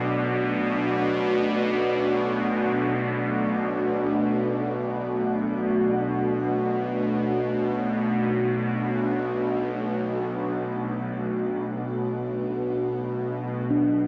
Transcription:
0.00 13.71 B1 medium
0.00 13.69 B2 medium
0.00 13.72 B2 medium
0.00 13.70 A3 medium
0.00 14.07 D4 medium
0.00 14.07 F#4 medium
0.00 13.72 A4 medium
0.00 13.68 D5 medium
13.68 14.07 B3 medium
13.68 14.07 D4 medium
13.72 14.07 B1 medium
13.72 14.07 B2 medium

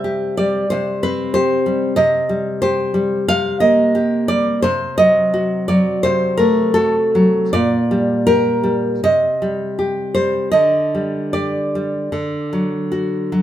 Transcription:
0.00 0.65 C3 medium
0.00 0.37 G3 soft
0.00 0.34 E5 medium
0.04 1.00 G4 medium
0.37 1.33 G3 soft
0.37 0.68 D5 medium
0.70 1.94 C3 soft
0.70 1.00 C5 medium
1.03 1.98 C4 soft
1.03 1.32 B4 medium
1.34 1.98 G4 soft
1.34 1.95 C5 medium
1.66 1.97 G3 soft
1.96 3.25 C3 medium
1.96 2.60 D#5 medium
2.29 2.93 G3 soft
2.62 3.62 G4 medium
2.62 3.26 C5 medium
2.94 3.93 G3 soft
3.28 4.58 C3 soft
3.28 3.60 F5 loud
3.60 4.62 A#3 soft
3.60 4.25 D#5 medium
3.95 4.63 G4 medium
4.28 4.63 G3 soft
4.28 4.61 D5 medium
4.62 5.98 C3 medium
4.62 4.96 C5 medium
4.98 5.68 F#3 soft
4.98 5.64 D#5 medium
5.34 6.38 F#4 medium
5.68 6.76 F#3 soft
5.68 6.01 D5 medium
6.03 7.51 C3 medium
6.03 6.37 C5 medium
6.38 7.54 A3 soft
6.38 6.73 A#4 medium
6.74 7.54 F#4 medium
6.74 7.50 A4 medium
7.15 7.54 F#3 soft
7.53 8.99 A#2 medium
7.53 8.21 D5 medium
7.91 8.62 G3 soft
8.27 9.04 G4 medium
8.27 9.01 A#4 medium
8.64 9.03 G3 soft
9.04 10.50 C3 medium
9.04 10.11 D#5 medium
9.42 10.14 G3 soft
9.79 10.54 G4 soft
10.14 10.54 G3 soft
10.14 10.51 C5 medium
10.52 12.08 D3 medium
10.52 11.30 D#5 medium
10.95 11.74 G3 soft
11.33 12.12 G4 soft
11.33 13.26 D5 medium
11.75 12.13 G3 soft
12.12 13.42 D3 soft
12.53 13.31 F#3 soft
12.92 13.42 F#4 soft
13.32 13.42 F#3 soft

